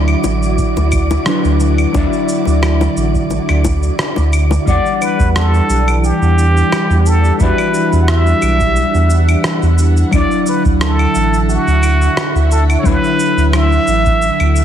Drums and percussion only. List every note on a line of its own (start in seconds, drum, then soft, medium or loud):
0.08 cabasa soft
0.08 claves medium
0.24 high bongo medium
0.24 cabasa medium
0.43 cabasa soft
0.58 kick loud
0.58 cabasa soft
0.77 high bongo medium
0.77 cabasa soft
0.92 kick medium
0.92 cabasa medium
0.92 claves medium
1.11 high bongo medium
1.11 cabasa soft
1.26 cross-stick loud
1.26 cabasa soft
1.45 cabasa soft
1.60 high bongo soft
1.60 cabasa medium
1.78 cabasa soft
1.78 claves medium
1.94 kick loud
1.94 high bongo medium
1.94 cabasa soft
2.13 cabasa soft
2.29 cabasa medium
2.45 high bongo soft
2.45 cabasa soft
2.63 cross-stick loud
2.63 cabasa soft
2.63 claves medium
2.81 high bongo medium
2.81 cabasa soft
2.97 cabasa medium
3.15 kick medium
3.15 cabasa soft
3.31 high bongo soft
3.31 cabasa soft
3.49 cross-stick soft
3.49 cabasa soft
3.49 claves medium
3.65 kick medium
3.65 high bongo medium
3.65 cabasa medium
3.83 cabasa soft
3.99 cross-stick loud
3.99 cabasa soft
4.16 high bongo medium
4.16 cabasa soft
4.33 cabasa medium
4.33 claves medium
4.51 high bongo medium
4.51 cabasa soft
4.67 kick loud
4.67 cabasa soft
4.86 cabasa soft
5.02 cabasa medium
5.02 claves medium
5.20 kick loud
5.20 cabasa soft
5.36 cross-stick loud
5.36 cabasa soft
5.54 cabasa soft
5.70 cabasa medium
5.88 cabasa soft
5.88 claves medium
6.04 cabasa soft
6.22 cabasa soft
6.39 cabasa medium
6.57 cabasa soft
6.72 cross-stick loud
6.72 cabasa soft
6.72 claves medium
6.91 cabasa soft
7.06 cabasa medium
7.24 cabasa soft
7.40 kick loud
7.40 cabasa soft
7.58 cabasa soft
7.58 claves medium
7.74 cabasa medium
7.93 cabasa soft
8.08 cross-stick loud
8.08 cabasa soft
8.26 cabasa soft
8.42 cabasa medium
8.42 claves medium
8.60 kick loud
8.60 cabasa soft
8.76 cabasa soft
8.95 cabasa soft
9.10 cabasa medium
9.29 cabasa soft
9.29 claves medium
9.44 cross-stick loud
9.44 cabasa soft
9.62 cabasa soft
9.78 cabasa medium
9.97 cabasa soft
10.13 kick loud
10.13 cabasa soft
10.13 claves medium
10.31 cabasa soft
10.47 cabasa medium
10.65 kick loud
10.65 cabasa soft
10.81 cross-stick loud
10.81 cabasa soft
10.99 cabasa soft
10.99 claves medium
11.15 cabasa medium
11.34 cabasa soft
11.50 cabasa soft
11.68 cabasa soft
11.83 cabasa medium
11.83 claves medium
12.02 cabasa soft
12.17 cross-stick loud
12.17 cabasa soft
12.36 cabasa soft
12.52 cabasa medium
12.70 cabasa soft
12.70 claves medium
12.86 kick loud
12.86 cabasa soft
13.04 cabasa soft
13.20 cabasa medium
13.38 cabasa soft
13.53 cross-stick loud
13.53 cabasa soft
13.53 claves medium
13.72 cabasa soft
13.88 cabasa medium
14.06 kick loud
14.06 cabasa soft
14.22 cabasa medium
14.40 cabasa soft
14.40 claves medium
14.56 cabasa medium